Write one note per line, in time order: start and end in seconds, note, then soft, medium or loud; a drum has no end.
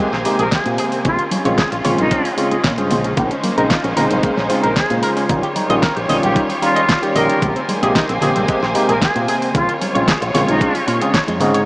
0.00 0.10 C3 medium
0.00 0.10 G#3 medium
0.00 0.10 A#3 medium
0.00 1.03 A#3 medium
0.00 0.11 G4 loud
0.00 1.03 C5 medium
0.00 1.03 G#5 medium
0.13 0.23 A#1 medium
0.13 0.16 C4 medium
0.13 snare soft
0.25 0.43 C3 medium
0.25 0.43 G#3 medium
0.25 0.43 A#3 medium
0.25 0.36 D#4 medium
0.25 0.44 G4 medium
0.25 open hi-hat loud
0.39 0.50 A#1 medium
0.39 0.43 G#4 loud
0.39 0.50 A#4 medium
0.39 closed hi-hat medium
0.52 0.56 G3 medium
0.52 0.68 G#4 medium
0.52 kick loud
0.52 snare loud
0.52 closed hi-hat medium
0.65 0.76 A#2 medium
0.65 1.02 C3 medium
0.65 1.02 A#3 medium
0.65 0.70 C4 medium
0.65 1.02 G#5 medium
0.65 closed hi-hat soft
0.78 0.85 G#4 loud
0.78 open hi-hat loud
0.92 0.99 C4 medium
0.92 open hi-hat medium
1.05 1.16 A#1 medium
1.05 1.16 C#3 medium
1.05 1.16 G#3 medium
1.05 1.17 C4 medium
1.05 3.15 C#4 medium
1.05 1.09 C#4 medium
1.05 3.15 F4 medium
1.05 1.22 F4 medium
1.05 1.17 F4 medium
1.05 kick loud
1.05 closed hi-hat medium
1.05 low conga medium
1.19 1.23 F4 medium
1.19 closed hi-hat soft
1.31 1.42 C#4 medium
1.31 open hi-hat loud
1.31 high conga loud
1.45 1.56 A#1 medium
1.45 1.62 C#3 medium
1.45 1.62 G#3 medium
1.45 1.62 C4 medium
1.45 1.62 F4 loud
1.45 1.49 C#5 loud
1.45 closed hi-hat soft
1.58 1.68 G#4 loud
1.58 kick loud
1.58 snare loud
1.58 closed hi-hat medium
1.72 1.83 A#1 loud
1.72 1.76 F4 medium
1.72 closed hi-hat soft
1.84 1.96 A#1 medium
1.84 2.08 C#3 medium
1.84 2.08 G#3 medium
1.84 2.08 C4 medium
1.84 2.08 F4 medium
1.84 1.92 C#5 loud
1.84 open hi-hat loud
1.84 low conga medium
1.98 2.09 A#1 medium
1.98 2.38 D#4 medium
1.98 2.05 F4 medium
1.98 closed hi-hat soft
1.98 high conga medium
2.11 2.22 C#3 medium
2.11 2.23 G#3 medium
2.11 2.23 C4 medium
2.11 2.18 C#4 loud
2.11 2.23 F4 loud
2.11 kick loud
2.11 closed hi-hat medium
2.25 2.29 F4 medium
2.25 open hi-hat medium
2.37 2.55 C#3 medium
2.37 2.55 G#3 medium
2.37 2.56 C4 medium
2.37 2.48 C#4 medium
2.37 2.56 F4 loud
2.37 open hi-hat loud
2.51 2.61 G#4 medium
2.51 muted fingered electric bass stroke soft
2.51 closed hi-hat soft
2.64 2.78 A#2 medium
2.64 2.71 C#4 medium
2.64 kick loud
2.64 snare loud
2.64 closed hi-hat medium
2.77 2.89 G2 medium
2.77 3.14 C#3 medium
2.77 3.14 G#3 medium
2.77 2.82 C#4 medium
2.77 3.14 G#4 medium
2.77 3.14 C5 medium
2.77 closed hi-hat soft
2.91 3.13 A#1 loud
2.91 2.95 F4 medium
2.91 open hi-hat loud
2.91 low conga medium
3.04 3.08 C#4 medium
3.04 closed hi-hat medium
3.17 3.29 A#1 loud
3.17 3.28 C#3 medium
3.17 3.28 G#3 medium
3.17 5.28 G#3 medium
3.17 3.21 A#3 medium
3.17 3.29 C4 medium
3.17 5.28 C#4 medium
3.17 5.28 D#4 medium
3.17 3.29 D#4 medium
3.17 5.28 C5 medium
3.17 kick loud
3.17 closed hi-hat medium
3.17 low conga medium
3.31 3.35 C#4 medium
3.31 closed hi-hat soft
3.44 3.54 A#3 medium
3.44 open hi-hat loud
3.44 high conga medium
3.57 3.68 A#1 medium
3.57 3.75 C#3 medium
3.57 3.75 G#3 medium
3.57 3.75 C4 medium
3.57 3.75 D#4 loud
3.57 3.62 A#4 loud
3.57 closed hi-hat soft
3.70 3.81 F4 loud
3.70 kick loud
3.70 snare loud
3.70 closed hi-hat medium
3.84 3.95 A#1 loud
3.84 3.88 C#4 medium
3.84 closed hi-hat soft
3.96 4.09 A#1 medium
3.96 4.20 C#3 medium
3.96 4.21 G#3 medium
3.96 4.21 C4 medium
3.96 4.21 D#4 medium
3.96 4.04 A#4 loud
3.96 open hi-hat loud
3.96 low conga medium
4.11 4.21 A#1 medium
4.11 4.17 C#4 medium
4.11 closed hi-hat medium
4.11 high conga medium
4.23 4.35 C#3 medium
4.23 4.35 G#3 medium
4.23 4.30 A#3 loud
4.23 4.35 C4 medium
4.23 4.35 D#4 loud
4.23 kick loud
4.23 closed hi-hat medium
4.37 4.48 A#1 medium
4.37 4.41 C#4 medium
4.37 snare soft
4.49 4.68 C#3 medium
4.49 4.68 G#3 medium
4.49 4.68 C4 medium
4.49 4.68 D#4 medium
4.49 4.60 F4 medium
4.49 open hi-hat loud
4.63 4.75 A#1 medium
4.63 4.67 A#4 loud
4.63 4.74 A#4 medium
4.63 closed hi-hat soft
4.76 4.81 G#3 medium
4.76 4.93 G#4 loud
4.76 kick loud
4.76 snare loud
4.76 closed hi-hat medium
4.90 5.01 A#2 medium
4.90 5.26 C#3 medium
4.90 5.26 G#3 medium
4.90 4.94 C#4 medium
4.90 5.27 F4 medium
4.90 5.27 C5 medium
4.90 closed hi-hat soft
5.03 5.10 A#4 loud
5.03 open hi-hat loud
5.17 5.23 C#4 medium
5.17 open hi-hat medium
5.29 5.41 A#1 loud
5.29 5.41 D#3 medium
5.29 7.40 G3 medium
5.29 5.41 G3 medium
5.29 5.41 C#4 medium
5.29 5.34 D#4 medium
5.29 7.40 F4 medium
5.29 5.41 F4 medium
5.29 7.40 C#5 medium
5.29 kick loud
5.29 closed hi-hat medium
5.29 low conga medium
5.43 5.47 G4 medium
5.43 closed hi-hat soft
5.56 5.66 D#4 medium
5.56 open hi-hat loud
5.56 high conga medium
5.69 5.81 A#1 medium
5.69 5.87 D#3 medium
5.69 5.87 G3 medium
5.69 5.87 C#4 medium
5.69 5.87 F4 loud
5.69 5.74 D#5 loud
5.69 closed hi-hat medium
5.82 5.93 A#4 loud
5.82 kick loud
5.82 snare loud
5.82 closed hi-hat medium
5.96 6.07 A#1 loud
5.96 6.00 G4 medium
5.96 closed hi-hat soft
6.08 6.21 A#1 medium
6.08 6.32 D#3 medium
6.08 6.33 G3 medium
6.08 6.33 C#4 medium
6.08 6.33 F4 medium
6.08 6.16 D#5 loud
6.08 open hi-hat loud
6.08 low conga medium
6.23 6.34 A#1 medium
6.23 6.29 G4 medium
6.23 6.38 G4 medium
6.23 closed hi-hat medium
6.23 high conga medium
6.35 6.47 D#3 medium
6.35 6.47 G3 medium
6.35 6.47 C#4 medium
6.35 6.43 D#4 loud
6.35 6.47 F4 loud
6.35 kick loud
6.35 closed hi-hat medium
6.49 6.53 G4 medium
6.49 open hi-hat medium
6.62 6.80 D#3 medium
6.62 6.80 G3 medium
6.62 6.80 C#4 medium
6.62 7.03 F4 medium
6.62 6.80 F4 loud
6.62 6.73 A#4 medium
6.62 open hi-hat loud
6.76 6.80 D#5 loud
6.76 closed hi-hat medium
6.89 6.93 C#4 medium
6.89 kick loud
6.89 snare loud
6.89 closed hi-hat medium
7.02 7.39 D#3 medium
7.02 7.39 G3 medium
7.02 7.39 C#4 medium
7.02 7.07 G4 medium
7.02 7.39 G4 medium
7.02 closed hi-hat soft
7.15 7.27 A#1 medium
7.15 7.48 A#4 loud
7.15 7.22 D#5 loud
7.15 open hi-hat loud
7.15 low conga medium
7.29 7.36 G4 medium
7.29 closed hi-hat medium
7.42 7.54 A#1 loud
7.42 7.53 C3 medium
7.42 7.46 G#3 medium
7.42 7.53 G#3 medium
7.42 9.52 A#3 medium
7.42 7.54 A#3 medium
7.42 7.54 G4 loud
7.42 9.52 C5 medium
7.42 9.52 G#5 medium
7.42 kick loud
7.42 closed hi-hat medium
7.42 low conga medium
7.56 7.60 C4 medium
7.56 closed hi-hat soft
7.69 7.79 G#3 medium
7.69 open hi-hat loud
7.69 high conga medium
7.82 7.93 A#1 medium
7.82 7.99 C3 loud
7.82 8.00 G#3 medium
7.82 8.00 A#3 medium
7.82 8.00 G4 loud
7.82 7.86 G#4 loud
7.82 closed hi-hat medium
7.95 8.06 D#4 loud
7.95 kick loud
7.95 snare loud
7.95 closed hi-hat medium
8.09 8.20 A#1 loud
8.09 8.13 C4 medium
8.09 closed hi-hat soft
8.21 8.33 A#1 medium
8.21 8.45 C3 medium
8.21 8.45 G#3 medium
8.21 8.45 A#3 medium
8.21 8.46 G4 medium
8.21 8.29 G#4 loud
8.21 open hi-hat loud
8.21 low conga medium
8.36 8.46 A#1 medium
8.36 8.42 C4 medium
8.36 closed hi-hat medium
8.36 high conga medium
8.48 8.60 C3 medium
8.48 8.60 G#3 medium
8.48 8.55 G#3 loud
8.48 8.60 A#3 medium
8.48 8.60 G4 loud
8.48 kick loud
8.48 closed hi-hat medium
8.62 8.73 A#1 medium
8.62 8.66 C4 medium
8.62 snare soft
8.75 8.93 C3 medium
8.75 8.93 G#3 medium
8.75 8.93 A#3 medium
8.75 8.85 D#4 medium
8.75 8.93 G4 loud
8.75 open hi-hat loud
8.88 8.99 A#1 medium
8.88 8.93 G#4 loud
8.88 8.99 A#4 medium
8.88 closed hi-hat medium
9.01 9.06 G3 medium
9.01 9.18 G#4 loud
9.01 kick loud
9.01 snare loud
9.01 closed hi-hat medium
9.15 9.26 A#2 medium
9.15 9.51 C3 medium
9.15 9.52 A#3 medium
9.15 9.19 C4 medium
9.15 9.52 G#5 medium
9.15 closed hi-hat soft
9.28 9.35 G#4 loud
9.28 open hi-hat loud
9.42 9.48 C4 medium
9.42 open hi-hat medium
9.54 9.66 A#1 loud
9.54 9.66 C#3 medium
9.54 9.66 G#3 medium
9.54 9.66 C4 medium
9.54 9.59 C#4 medium
9.54 9.71 F4 medium
9.54 11.65 F4 medium
9.54 9.66 F4 medium
9.54 11.65 C#5 medium
9.54 kick loud
9.54 closed hi-hat medium
9.54 low conga medium
9.69 9.72 F4 medium
9.69 closed hi-hat soft
9.81 9.92 C#4 medium
9.81 open hi-hat loud
9.81 high conga medium
9.95 10.06 A#1 medium
9.95 10.12 C#3 medium
9.95 10.12 G#3 medium
9.95 10.12 C4 medium
9.95 10.12 F4 loud
9.95 9.99 C#5 loud
9.95 closed hi-hat medium
10.07 10.18 G#4 loud
10.07 kick loud
10.07 snare loud
10.07 closed hi-hat medium
10.21 10.32 A#1 loud
10.21 10.25 F4 medium
10.21 closed hi-hat soft
10.34 10.46 A#1 medium
10.34 10.58 C#3 medium
10.34 10.58 G#3 medium
10.34 10.58 C4 medium
10.34 10.58 F4 medium
10.34 10.41 C#5 loud
10.34 snare soft
10.34 open hi-hat loud
10.34 low conga medium
10.48 10.59 A#1 medium
10.48 10.87 D#4 medium
10.48 10.54 F4 medium
10.48 closed hi-hat medium
10.48 high conga medium
10.61 10.72 C#3 medium
10.61 10.72 G#3 medium
10.61 10.72 C4 medium
10.61 10.68 C#4 loud
10.61 10.73 F4 loud
10.61 kick loud
10.61 closed hi-hat medium
10.75 10.78 F4 medium
10.75 open hi-hat medium
10.87 10.99 A#2 medium
10.87 10.98 C#4 loud
10.87 open hi-hat loud
11.01 11.12 C#3 medium
11.01 11.12 G#3 medium
11.01 11.12 C4 medium
11.01 11.07 F4 medium
11.01 11.12 G#4 medium
11.01 closed hi-hat medium
11.14 11.21 C#5 medium
11.14 kick loud
11.14 snare loud
11.14 closed hi-hat medium
11.28 11.41 F2 medium
11.28 11.34 G#3 loud
11.28 closed hi-hat soft
11.40 11.63 G#2 medium
11.40 11.58 C#3 medium
11.40 11.58 G#3 medium
11.40 11.58 C4 medium
11.40 11.51 C#4 medium
11.40 11.59 G#4 medium
11.40 open hi-hat loud
11.40 low conga loud
11.54 11.61 C#5 loud
11.54 closed hi-hat medium